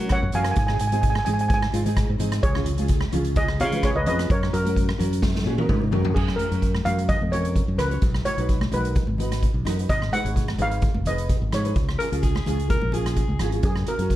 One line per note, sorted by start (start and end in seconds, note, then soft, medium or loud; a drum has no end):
0.00 0.17 F#3 medium
0.00 0.20 C#4 medium
0.00 0.20 F#4 medium
0.00 0.21 A#4 medium
0.00 0.11 C#5 loud
0.09 0.22 C#5 medium
0.09 0.22 F#5 loud
0.09 kick medium
0.09 cross-stick medium
0.09 closed hi-hat medium
0.23 0.32 F#2 medium
0.32 0.53 F#2 medium
0.32 0.55 C#4 medium
0.32 0.55 F#4 medium
0.32 0.55 A#4 medium
0.32 0.42 F5 medium
0.32 0.42 G#5 medium
0.32 closed hi-hat medium
0.32 low conga medium
0.43 0.50 G#5 medium
0.43 cross-stick medium
0.43 closed hi-hat medium
0.51 0.57 G#5 medium
0.56 0.76 G#2 loud
0.56 0.65 G#5 medium
0.56 kick loud
0.56 closed hi-hat medium
0.67 0.83 C4 medium
0.67 0.83 D#4 medium
0.67 0.83 G#4 medium
0.67 0.73 G#5 medium
0.67 cross-stick medium
0.74 0.80 G#5 medium
0.79 1.19 G#2 medium
0.79 0.86 G#5 medium
0.79 closed hi-hat medium
0.87 0.93 G#5 medium
0.92 1.13 C4 medium
0.92 1.14 D#4 medium
0.92 1.14 G#4 medium
0.92 1.00 G#5 medium
0.92 closed hi-hat medium
0.92 high conga medium
1.01 1.08 G#5 medium
1.01 kick medium
1.01 closed hi-hat medium
1.10 1.17 G#5 medium
1.15 1.24 G#5 medium
1.15 cross-stick medium
1.25 1.66 G#2 medium
1.25 1.55 C4 medium
1.25 1.55 D#4 medium
1.25 1.55 G#4 medium
1.25 1.31 G#5 medium
1.25 closed hi-hat medium
1.25 low conga medium
1.34 1.40 G#5 medium
1.39 1.47 G#5 medium
1.39 closed hi-hat medium
1.49 1.53 G#5 medium
1.49 kick loud
1.49 closed hi-hat medium
1.49 high conga medium
1.54 1.61 G#5 medium
1.62 cross-stick medium
1.72 2.03 G#2 medium
1.72 1.80 C4 medium
1.72 1.81 D#4 medium
1.72 1.81 F4 loud
1.72 closed hi-hat medium
1.84 2.06 C4 medium
1.84 2.06 D#4 medium
1.84 2.07 G#4 loud
1.84 closed hi-hat medium
1.84 high conga medium
1.84 low conga medium
1.97 kick medium
1.97 cross-stick medium
1.97 closed hi-hat medium
2.10 2.19 G#2 medium
2.18 2.39 G#2 medium
2.18 2.40 C4 medium
2.18 2.41 D#4 medium
2.18 2.41 G#4 medium
2.18 closed hi-hat medium
2.18 low conga medium
2.32 cross-stick medium
2.32 closed hi-hat medium
2.43 2.63 C#2 loud
2.43 3.33 G#4 medium
2.43 3.32 C#5 medium
2.43 kick loud
2.43 closed hi-hat medium
2.54 2.69 C#4 medium
2.54 2.69 F4 medium
2.54 2.69 G#4 medium
2.54 cross-stick medium
2.65 3.04 C#2 medium
2.65 closed hi-hat medium
2.77 2.99 C#4 medium
2.77 2.99 F4 medium
2.77 3.00 G#4 medium
2.77 closed hi-hat medium
2.77 high conga medium
2.88 kick medium
2.88 closed hi-hat medium
3.01 cross-stick medium
3.12 3.61 C#2 medium
3.12 3.41 C#4 medium
3.12 3.41 F4 medium
3.12 3.42 G#4 medium
3.12 closed hi-hat medium
3.12 low conga medium
3.24 closed hi-hat medium
3.36 3.59 G#4 medium
3.36 3.61 D#5 loud
3.36 kick loud
3.36 closed hi-hat medium
3.36 high conga medium
3.48 cross-stick medium
3.59 3.89 C#3 loud
3.59 3.67 C#4 medium
3.59 3.67 F4 medium
3.59 3.67 G#4 medium
3.59 3.82 C#5 medium
3.59 3.84 F5 loud
3.59 closed hi-hat medium
3.71 3.92 C#4 medium
3.71 3.93 F4 medium
3.71 3.93 B4 medium
3.71 closed hi-hat medium
3.71 high conga medium
3.71 low conga medium
3.83 3.96 G#4 medium
3.83 3.97 C#5 medium
3.83 kick medium
3.83 cross-stick medium
3.83 closed hi-hat medium
3.95 4.04 C#2 medium
3.95 4.06 B4 medium
3.95 4.06 D#5 medium
4.06 4.26 F2 medium
4.06 4.27 C#4 medium
4.06 4.28 F4 medium
4.06 4.28 G#4 medium
4.06 4.29 B4 medium
4.06 4.31 D#5 medium
4.06 closed hi-hat medium
4.06 low conga medium
4.19 cross-stick medium
4.19 closed hi-hat medium
4.30 4.49 F#2 medium
4.30 4.41 A#4 medium
4.30 4.41 C#5 medium
4.30 kick loud
4.30 closed hi-hat medium
4.42 4.55 C#4 medium
4.42 4.56 F#4 medium
4.42 4.56 A#4 medium
4.42 cross-stick medium
4.53 4.91 F#2 medium
4.53 5.42 F#4 medium
4.53 5.42 A#4 medium
4.53 closed hi-hat medium
4.64 4.86 C#4 medium
4.64 4.86 F#4 medium
4.64 4.86 A#4 medium
4.64 closed hi-hat medium
4.64 high conga medium
4.76 kick medium
4.76 closed hi-hat medium
4.89 cross-stick medium
4.98 5.45 F#2 medium
4.98 5.27 C#4 medium
4.98 5.27 F#4 medium
4.98 5.28 A#4 medium
4.98 closed hi-hat medium
4.98 low conga medium
5.13 closed hi-hat medium
5.22 kick loud
5.22 snare medium
5.22 high conga medium
5.35 snare medium
5.46 5.67 A#2 medium
5.46 5.53 C#4 medium
5.46 5.54 F#4 medium
5.46 5.54 G#4 loud
5.57 5.79 C#4 medium
5.57 5.79 F#4 medium
5.57 5.79 A#4 loud
5.57 high tom medium
5.69 5.90 G#2 medium
5.69 kick medium
5.69 mid tom medium
5.69 high conga medium
5.82 high conga medium
5.91 6.14 F#2 medium
5.91 6.13 C#4 medium
5.91 6.13 F#4 medium
5.91 6.14 A#4 medium
5.91 floor tom medium
5.91 low conga medium
6.05 floor tom medium
6.05 low conga medium
6.14 6.35 F#2 medium
6.14 6.37 G#4 medium
6.14 kick loud
6.14 crash medium
6.28 cross-stick medium
6.36 6.46 C#4 medium
6.36 6.46 F#4 medium
6.36 6.81 A#4 medium
6.36 6.47 A#4 medium
6.36 closed hi-hat medium
6.36 high conga medium
6.49 6.80 F#2 medium
6.49 6.71 C#4 medium
6.49 6.72 F#4 medium
6.49 6.72 A#4 medium
6.49 closed hi-hat medium
6.62 kick medium
6.62 closed hi-hat medium
6.75 cross-stick medium
6.75 high conga medium
6.84 7.15 F#2 medium
6.84 7.13 C#4 medium
6.84 7.13 F#4 medium
6.84 7.14 A#4 medium
6.84 7.07 F5 medium
6.84 closed hi-hat medium
6.84 high conga medium
6.84 low conga medium
6.98 closed hi-hat medium
7.09 7.31 D#5 loud
7.09 kick loud
7.09 closed hi-hat medium
7.09 low conga medium
7.21 7.60 F2 medium
7.21 high conga medium
7.30 7.60 C#4 medium
7.30 7.60 F#4 medium
7.30 7.60 A#4 medium
7.30 7.80 C#5 medium
7.30 closed hi-hat medium
7.30 low conga medium
7.45 closed hi-hat medium
7.56 kick medium
7.56 closed hi-hat medium
7.68 7.77 F#2 medium
7.77 7.98 C#2 medium
7.77 7.85 C#4 medium
7.77 7.85 F#4 medium
7.77 7.86 A#4 medium
7.77 8.27 B4 medium
7.77 cross-stick medium
7.77 closed hi-hat medium
7.77 low conga medium
7.89 8.01 C#4 medium
7.89 8.02 F#4 medium
7.89 8.02 C#5 medium
7.89 closed hi-hat soft
8.02 8.21 B1 loud
8.02 kick loud
8.02 closed hi-hat medium
8.14 cross-stick medium
8.24 8.32 D#4 medium
8.24 8.33 F#4 medium
8.24 8.33 B4 medium
8.24 8.74 C#5 medium
8.24 closed hi-hat medium
8.24 high conga medium
8.37 8.66 B1 medium
8.37 8.58 D#4 medium
8.37 8.59 F#4 medium
8.37 8.59 B4 medium
8.37 closed hi-hat medium
8.49 kick medium
8.49 closed hi-hat medium
8.61 cross-stick medium
8.61 high conga medium
8.71 9.02 B1 medium
8.71 9.00 D#4 medium
8.71 9.00 F#4 medium
8.71 9.01 A#4 medium
8.71 9.16 B4 medium
8.71 closed hi-hat medium
8.71 high conga medium
8.71 low conga medium
8.85 closed hi-hat medium
8.95 kick loud
8.95 closed hi-hat medium
8.95 low conga medium
9.07 9.47 G#1 medium
9.07 high conga medium
9.18 9.47 D#4 medium
9.18 9.47 F#4 medium
9.18 9.47 B4 medium
9.18 closed hi-hat medium
9.18 low conga medium
9.32 cross-stick medium
9.32 closed hi-hat medium
9.43 kick medium
9.43 closed hi-hat medium
9.54 9.63 B1 medium
9.65 9.85 F#2 medium
9.65 9.73 D#4 medium
9.65 9.73 F#4 medium
9.65 9.74 A#4 medium
9.65 cross-stick medium
9.65 closed hi-hat medium
9.65 low conga medium
9.78 9.89 D#4 medium
9.78 9.89 F#4 medium
9.78 9.90 B4 medium
9.78 closed hi-hat medium
9.89 10.09 G#1 medium
9.89 10.11 D#5 loud
9.89 kick loud
9.89 closed hi-hat medium
10.02 cross-stick medium
10.12 10.20 D#4 medium
10.12 10.20 G#4 medium
10.12 10.21 B4 medium
10.12 10.56 F#5 medium
10.12 closed hi-hat medium
10.12 high conga medium
10.24 10.53 G#1 medium
10.24 10.45 D#4 medium
10.24 10.46 G#4 medium
10.24 10.46 C#5 medium
10.24 closed hi-hat medium
10.36 kick medium
10.36 closed hi-hat medium
10.48 cross-stick medium
10.48 high conga medium
10.58 10.88 G#1 medium
10.58 10.87 D#4 medium
10.58 10.87 G#4 medium
10.58 10.88 B4 medium
10.58 11.09 F5 loud
10.58 closed hi-hat medium
10.58 high conga medium
10.58 low conga medium
10.71 closed hi-hat medium
10.82 kick loud
10.82 closed hi-hat medium
10.82 low conga medium
10.94 11.34 F1 medium
10.94 high conga medium
11.05 11.34 D#4 medium
11.05 11.34 G#4 medium
11.05 11.35 B4 medium
11.05 11.54 D#5 medium
11.05 closed hi-hat medium
11.05 low conga medium
11.18 closed hi-hat medium
11.29 kick medium
11.29 closed hi-hat medium
11.42 11.51 G#1 medium
11.51 11.72 G#2 medium
11.51 11.59 D#4 medium
11.51 11.60 G#4 medium
11.51 11.60 B4 medium
11.51 12.90 C#5 medium
11.51 cross-stick medium
11.51 closed hi-hat medium
11.51 low conga medium
11.64 11.75 D#4 medium
11.64 11.76 G#4 medium
11.64 11.76 B4 medium
11.64 closed hi-hat soft
11.76 11.95 C#2 medium
11.76 kick medium
11.76 closed hi-hat medium
11.89 cross-stick medium
11.98 12.06 C#4 medium
11.98 12.07 F4 medium
11.98 12.07 G#4 medium
11.98 12.09 A#4 medium
11.98 closed hi-hat medium
12.11 12.40 C#2 medium
12.11 12.32 C#4 medium
12.11 12.33 F4 medium
12.11 12.33 G#4 medium
12.11 closed hi-hat medium
12.22 12.66 G#4 medium
12.22 kick medium
12.22 closed hi-hat medium
12.35 cross-stick medium
12.35 high conga medium
12.46 12.76 C#2 medium
12.46 12.75 C#4 medium
12.46 12.75 F4 medium
12.46 12.75 G#4 medium
12.46 closed hi-hat medium
12.46 high conga medium
12.46 low conga medium
12.59 closed hi-hat medium
12.70 12.94 A#4 medium
12.70 kick loud
12.70 closed hi-hat medium
12.82 13.20 A#1 medium
12.82 high conga medium
12.92 13.21 C#4 medium
12.92 13.21 F4 medium
12.92 13.16 G#4 medium
12.92 13.22 G#4 medium
12.92 closed hi-hat medium
12.92 low conga medium
13.06 cross-stick medium
13.06 closed hi-hat medium
13.16 13.50 G#4 medium
13.16 kick medium
13.16 closed hi-hat medium
13.28 13.38 C#2 medium
13.28 high conga medium
13.39 13.59 G#1 medium
13.39 13.47 C#4 medium
13.39 13.48 F4 medium
13.39 13.48 G#4 medium
13.39 cross-stick medium
13.39 closed hi-hat medium
13.39 low conga medium
13.52 13.63 C#4 medium
13.52 13.63 F4 medium
13.52 13.64 G#4 medium
13.52 closed hi-hat medium
13.63 13.83 F#2 medium
13.63 13.86 G#4 medium
13.63 kick loud
13.63 closed hi-hat medium
13.76 cross-stick medium
13.86 13.93 C#4 medium
13.86 13.94 F#4 medium
13.86 13.94 A#4 medium
13.86 14.16 A#4 medium
13.86 closed hi-hat medium
13.98 14.16 F#2 medium
13.98 14.16 C#4 medium
13.98 14.16 F#4 medium
13.98 14.16 A#4 medium
13.98 closed hi-hat medium
14.10 kick medium
14.10 closed hi-hat medium